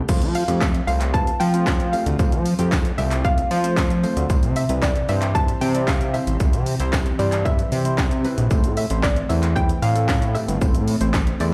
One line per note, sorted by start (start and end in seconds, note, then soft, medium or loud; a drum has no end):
0.09 0.23 F2 loud
0.09 0.39 A3 loud
0.09 4.26 A3 medium
0.09 0.39 C4 medium
0.09 11.54 C4 medium
0.09 0.40 F4 medium
0.09 4.26 F4 loud
0.09 0.40 C5 loud
0.09 kick loud
0.09 crash loud
0.09 tambourine medium
0.09 shaker medium
0.22 0.44 F3 medium
0.22 closed hi-hat medium
0.22 shaker medium
0.35 0.62 F5 medium
0.35 open hi-hat medium
0.35 tambourine medium
0.35 shaker medium
0.48 0.81 F2 medium
0.48 0.79 A3 medium
0.48 0.79 C4 medium
0.48 0.79 F4 medium
0.48 0.79 G4 medium
0.48 closed hi-hat medium
0.48 shaker medium
0.61 0.88 E5 loud
0.61 kick loud
0.61 snare medium
0.61 clap loud
0.61 tambourine medium
0.61 shaker medium
0.75 closed hi-hat medium
0.75 shaker medium
0.87 1.31 C2 loud
0.87 1.08 A3 medium
0.87 1.08 C4 medium
0.87 1.08 F4 medium
0.87 1.08 C5 medium
0.87 1.15 F5 medium
0.87 open hi-hat medium
0.87 tambourine medium
0.87 shaker medium
1.01 clap medium
1.01 closed hi-hat medium
1.01 shaker medium
1.14 1.45 A3 medium
1.14 1.45 C4 medium
1.14 1.45 F4 medium
1.14 1.45 B4 medium
1.14 1.41 A5 loud
1.14 kick loud
1.14 tambourine soft
1.14 shaker medium
1.27 closed hi-hat medium
1.27 shaker medium
1.40 1.95 F3 loud
1.40 1.94 G5 loud
1.40 open hi-hat medium
1.40 tambourine soft
1.40 shaker medium
1.54 1.84 A3 medium
1.54 1.84 C4 medium
1.54 1.84 F4 medium
1.54 1.84 C5 medium
1.54 closed hi-hat medium
1.54 shaker medium
1.67 kick loud
1.67 snare loud
1.67 clap loud
1.67 tambourine medium
1.67 shaker medium
1.80 closed hi-hat soft
1.80 shaker medium
1.93 2.13 A3 medium
1.93 2.13 C4 medium
1.93 2.14 F4 medium
1.93 2.14 G4 medium
1.93 2.68 F5 medium
1.93 open hi-hat medium
1.93 tambourine medium
1.93 shaker soft
2.06 2.17 D2 medium
2.06 closed hi-hat medium
2.06 shaker medium
2.19 2.34 F2 loud
2.19 2.50 A3 medium
2.19 2.50 C4 medium
2.19 2.50 F4 medium
2.19 2.50 C5 medium
2.19 kick loud
2.19 tambourine medium
2.19 shaker medium
2.32 2.54 F3 medium
2.32 closed hi-hat medium
2.32 shaker medium
2.45 open hi-hat medium
2.45 tambourine soft
2.45 shaker medium
2.59 2.92 F2 medium
2.59 2.89 A3 medium
2.59 2.89 C4 medium
2.59 2.90 F4 medium
2.59 2.90 G4 loud
2.59 closed hi-hat medium
2.59 shaker medium
2.72 kick loud
2.72 snare medium
2.72 clap loud
2.72 tambourine medium
2.72 shaker medium
2.85 closed hi-hat medium
2.85 shaker medium
2.98 3.42 C2 loud
2.98 3.19 A3 medium
2.98 3.19 C4 medium
2.98 3.19 F4 medium
2.98 3.19 G4 medium
2.98 3.25 E5 loud
2.98 open hi-hat medium
2.98 tambourine medium
2.98 shaker medium
3.11 clap medium
3.11 closed hi-hat medium
3.11 shaker medium
3.24 3.55 A3 medium
3.24 3.55 C4 medium
3.24 3.55 F4 medium
3.24 3.55 D5 medium
3.24 4.00 F5 loud
3.24 kick loud
3.24 tambourine soft
3.24 shaker medium
3.38 closed hi-hat medium
3.38 shaker medium
3.51 4.06 F3 loud
3.51 open hi-hat medium
3.51 tambourine soft
3.51 shaker medium
3.64 3.95 A3 medium
3.64 3.95 C4 medium
3.64 3.95 F4 medium
3.64 3.95 C5 medium
3.64 closed hi-hat medium
3.64 shaker medium
3.77 kick loud
3.77 snare medium
3.77 clap loud
3.77 tambourine medium
3.77 shaker medium
3.90 closed hi-hat medium
3.90 shaker medium
4.03 4.24 A3 medium
4.03 4.24 C4 medium
4.03 4.24 F4 medium
4.03 4.24 C5 loud
4.03 open hi-hat medium
4.03 tambourine medium
4.03 shaker soft
4.17 4.28 D2 medium
4.17 closed hi-hat medium
4.17 shaker medium
4.30 4.44 C2 loud
4.30 8.47 C3 medium
4.30 11.54 E3 medium
4.30 4.60 G3 medium
4.30 4.60 C4 medium
4.30 4.61 E4 medium
4.30 8.47 G4 medium
4.30 4.61 C5 loud
4.30 kick loud
4.30 tambourine medium
4.30 shaker medium
4.43 4.65 C3 medium
4.43 closed hi-hat medium
4.43 shaker medium
4.56 4.83 E5 medium
4.56 open hi-hat medium
4.56 tambourine medium
4.56 shaker medium
4.69 5.02 C2 medium
4.69 5.00 G3 medium
4.69 5.00 C4 medium
4.69 5.00 E4 medium
4.69 5.00 B4 medium
4.69 closed hi-hat medium
4.69 shaker medium
4.82 5.10 D5 loud
4.82 kick loud
4.82 snare medium
4.82 clap loud
4.82 tambourine medium
4.82 shaker medium
4.96 closed hi-hat medium
4.96 shaker medium
5.09 5.53 G2 loud
5.09 5.29 G3 medium
5.09 5.29 C4 medium
5.09 5.29 E4 medium
5.09 5.29 C5 medium
5.09 5.36 E5 loud
5.09 open hi-hat medium
5.09 tambourine medium
5.09 shaker medium
5.22 clap medium
5.22 closed hi-hat medium
5.22 shaker medium
5.35 5.66 G3 medium
5.35 5.66 C4 medium
5.35 5.66 E4 medium
5.35 5.66 C5 medium
5.35 5.62 A5 loud
5.35 kick loud
5.35 tambourine soft
5.35 shaker medium
5.48 closed hi-hat medium
5.48 shaker medium
5.61 6.16 C3 loud
5.61 5.88 G5 loud
5.61 open hi-hat medium
5.61 tambourine soft
5.61 shaker medium
5.75 6.05 G3 medium
5.75 6.05 C4 medium
5.75 6.05 E4 medium
5.75 6.05 D5 medium
5.75 closed hi-hat medium
5.75 shaker medium
5.87 6.15 F5 loud
5.87 kick loud
5.87 snare loud
5.87 clap loud
5.87 tambourine medium
5.87 shaker medium
6.01 closed hi-hat medium
6.01 shaker medium
6.14 6.34 G3 medium
6.14 6.34 C4 medium
6.14 6.35 E4 medium
6.14 6.35 C5 medium
6.14 6.89 E5 medium
6.14 open hi-hat medium
6.14 tambourine medium
6.14 shaker soft
6.27 6.38 A1 medium
6.27 closed hi-hat medium
6.27 shaker medium
6.40 6.55 C2 loud
6.40 6.71 G3 medium
6.40 6.71 C4 medium
6.40 6.71 E4 medium
6.40 6.71 C5 medium
6.40 kick loud
6.40 tambourine medium
6.40 shaker medium
6.53 6.75 C3 medium
6.53 closed hi-hat medium
6.53 shaker medium
6.66 open hi-hat medium
6.66 tambourine soft
6.66 shaker medium
6.80 7.13 C2 medium
6.80 7.10 G3 loud
6.80 7.10 C4 medium
6.80 7.11 E4 medium
6.80 7.11 C5 loud
6.80 closed hi-hat medium
6.80 shaker medium
6.93 kick loud
6.93 snare loud
6.93 clap loud
6.93 tambourine medium
6.93 shaker medium
7.06 closed hi-hat medium
7.06 shaker medium
7.19 7.63 G2 loud
7.19 7.40 G3 medium
7.19 7.40 C4 medium
7.19 7.40 E4 medium
7.19 7.40 C5 medium
7.19 7.46 D5 medium
7.19 open hi-hat medium
7.19 tambourine medium
7.19 shaker medium
7.32 clap medium
7.32 closed hi-hat medium
7.32 shaker medium
7.45 7.76 G3 medium
7.45 7.76 C4 medium
7.45 7.76 E4 medium
7.45 7.77 B4 medium
7.45 8.20 E5 loud
7.45 kick loud
7.45 tambourine soft
7.45 shaker medium
7.59 closed hi-hat medium
7.59 shaker medium
7.72 8.27 C3 loud
7.72 open hi-hat medium
7.72 tambourine soft
7.72 shaker medium
7.85 8.16 G3 medium
7.85 8.16 C4 medium
7.85 8.16 E4 medium
7.85 8.16 C5 medium
7.85 closed hi-hat medium
7.85 shaker medium
7.98 kick loud
7.98 snare medium
7.98 clap loud
7.98 tambourine medium
7.98 shaker medium
8.11 closed hi-hat medium
8.11 shaker medium
8.24 8.45 G3 loud
8.24 8.45 C4 medium
8.24 8.45 E4 medium
8.24 8.45 B4 loud
8.24 open hi-hat medium
8.24 tambourine medium
8.24 shaker soft
8.38 8.49 A#1 medium
8.38 closed hi-hat medium
8.38 shaker medium
8.50 8.66 A1 loud
8.50 8.81 A3 loud
8.50 11.54 A3 medium
8.50 8.81 C4 medium
8.50 8.81 E4 medium
8.50 8.82 C5 loud
8.50 kick loud
8.50 tambourine medium
8.50 shaker medium
8.64 8.86 A2 medium
8.64 closed hi-hat medium
8.64 shaker medium
8.77 9.04 E5 loud
8.77 open hi-hat medium
8.77 tambourine medium
8.77 shaker medium
8.90 9.23 A1 medium
8.90 9.21 A3 medium
8.90 9.21 C4 medium
8.90 9.21 E4 medium
8.90 9.21 C5 medium
8.90 closed hi-hat medium
8.90 shaker medium
9.03 9.28 D5 loud
9.03 kick loud
9.03 snare loud
9.03 clap loud
9.03 tambourine medium
9.03 shaker medium
9.16 closed hi-hat medium
9.16 shaker medium
9.29 9.74 E2 loud
9.29 9.50 A3 medium
9.29 9.50 C4 medium
9.29 9.50 E4 medium
9.29 9.50 C5 medium
9.29 9.54 E5 loud
9.29 open hi-hat medium
9.29 tambourine medium
9.29 shaker medium
9.43 clap medium
9.43 closed hi-hat medium
9.43 shaker medium
9.56 9.87 A3 medium
9.56 9.87 C4 medium
9.56 9.87 E4 medium
9.56 9.87 B4 medium
9.56 9.83 G5 loud
9.56 kick loud
9.56 shaker medium
9.69 closed hi-hat medium
9.69 shaker medium
9.82 10.37 A2 loud
9.82 10.37 F5 loud
9.82 open hi-hat medium
9.82 shaker medium
9.95 10.26 E3 medium
9.95 10.26 A3 medium
9.95 10.26 C4 medium
9.95 10.26 A4 medium
9.95 closed hi-hat medium
9.95 shaker medium
10.09 kick loud
10.09 snare loud
10.09 clap loud
10.09 tambourine medium
10.09 shaker medium
10.22 closed hi-hat medium
10.22 shaker medium
10.35 10.55 A3 medium
10.35 10.55 C4 medium
10.35 10.56 E4 medium
10.35 10.56 G4 medium
10.35 11.10 E5 medium
10.35 open hi-hat medium
10.35 tambourine medium
10.35 shaker soft
10.48 10.59 G1 medium
10.48 closed hi-hat medium
10.48 shaker medium
10.61 10.76 A1 loud
10.61 10.92 A3 medium
10.61 10.92 C4 medium
10.61 10.92 E4 medium
10.61 10.92 C5 medium
10.61 kick loud
10.61 tambourine medium
10.61 shaker medium
10.74 10.96 A2 medium
10.74 closed hi-hat medium
10.74 shaker medium
10.88 open hi-hat medium
10.88 tambourine medium
10.88 shaker medium
11.00 11.34 A1 medium
11.00 11.31 A3 loud
11.00 11.31 C4 medium
11.00 11.31 E4 medium
11.00 11.32 C5 loud
11.00 closed hi-hat medium
11.00 shaker medium
11.14 kick loud
11.14 snare medium
11.14 clap loud
11.14 tambourine medium
11.14 shaker medium
11.27 closed hi-hat medium
11.27 shaker medium
11.40 11.54 E2 loud
11.40 11.54 A3 medium
11.40 11.54 C4 medium
11.40 11.54 E4 medium
11.40 11.54 C5 medium
11.40 11.54 D5 loud
11.40 open hi-hat medium
11.40 tambourine medium
11.40 shaker medium